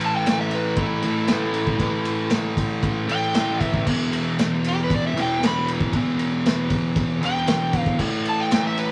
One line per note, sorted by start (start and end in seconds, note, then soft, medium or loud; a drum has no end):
0.00 1.01 A2 medium
0.00 1.04 E3 loud
0.00 1.01 A3 loud
0.00 ride medium
0.06 0.15 A5 medium
0.16 0.39 G5 loud
0.26 snare loud
0.26 ride loud
0.41 0.52 E5 medium
0.51 0.78 B4 medium
0.51 ride medium
0.76 2.28 E4 loud
0.76 kick loud
0.76 ride loud
1.02 1.27 A2 medium
1.02 1.30 E3 medium
1.02 1.27 A3 medium
1.02 ride medium
1.27 1.77 A2 medium
1.27 1.79 E3 medium
1.27 1.79 A3 medium
1.27 snare loud
1.27 ride loud
1.54 ride medium
1.67 kick medium
1.78 3.06 A2 medium
1.78 3.09 E3 loud
1.78 3.07 A3 loud
1.78 kick medium
1.78 ride medium
2.05 ride medium
2.30 snare loud
2.30 ride loud
2.57 kick medium
2.57 ride medium
2.83 kick loud
2.83 ride loud
3.08 3.33 A2 medium
3.08 3.36 E3 medium
3.08 3.33 A3 loud
3.08 3.62 G5 loud
3.08 ride medium
3.34 3.84 A2 medium
3.34 3.89 E3 medium
3.34 3.86 A3 medium
3.34 snare loud
3.34 ride loud
3.61 3.85 E5 loud
3.61 kick medium
3.61 ride medium
3.74 kick medium
3.86 5.14 E2 medium
3.86 5.14 B2 loud
3.86 5.14 E3 loud
3.86 kick loud
3.86 crash loud
4.13 ride medium
4.39 snare loud
4.39 ride loud
4.64 4.78 G4 medium
4.64 ride medium
4.84 4.93 B4 medium
4.90 kick loud
4.90 ride loud
4.96 5.05 D5 medium
5.07 5.17 E5 medium
5.15 5.39 E2 medium
5.15 5.40 B2 medium
5.15 5.43 E3 loud
5.15 snare soft
5.15 ride medium
5.22 5.44 G5 medium
5.41 5.91 E2 medium
5.41 5.92 B2 medium
5.41 5.96 E3 medium
5.41 snare loud
5.41 ride loud
5.46 5.69 B5 loud
5.68 ride medium
5.81 kick medium
5.93 7.21 E2 loud
5.93 7.22 B2 loud
5.93 7.21 E3 loud
5.93 kick loud
5.93 ride loud
6.19 ride medium
6.46 snare loud
6.46 ride loud
6.70 kick medium
6.70 ride medium
6.96 kick loud
6.96 ride loud
7.22 7.46 E2 medium
7.22 7.47 B2 medium
7.22 7.50 E3 medium
7.22 7.79 G5 loud
7.22 ride medium
7.47 7.98 E2 medium
7.47 7.99 B2 medium
7.47 8.01 E3 medium
7.47 snare loud
7.47 ride loud
7.73 kick medium
7.73 ride medium
7.79 7.99 F5 loud
7.86 kick medium
7.99 8.92 A2 medium
7.99 8.92 E3 loud
7.99 8.92 A3 loud
7.99 kick loud
7.99 crash loud
8.25 8.40 A5 loud
8.25 ride medium
8.40 8.65 G5 loud
8.51 snare loud
8.51 ride loud
8.67 8.78 E5 medium
8.77 8.92 B4 medium
8.77 ride medium